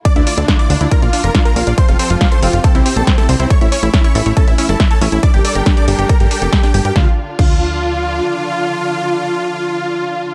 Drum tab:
CC |----------------|----------------|----------------|----------------|
HH |xxoxxxoxxxoxxxox|xxoxxxoxxxoxxxox|xxoxxxoxxxoxxxox|xxoxxxoxxxoxxxox|
SD |----o-------o---|----o-------oo--|----o-------o---|----o-------oo--|
BD |o---o---o---o---|o---o---o---o---|o---o---o---o---|o---o---o---o---|

CC |----x-----------|----------------|
HH |----------------|----------------|
SD |o---------------|----------------|
BD |o---o-----------|----------------|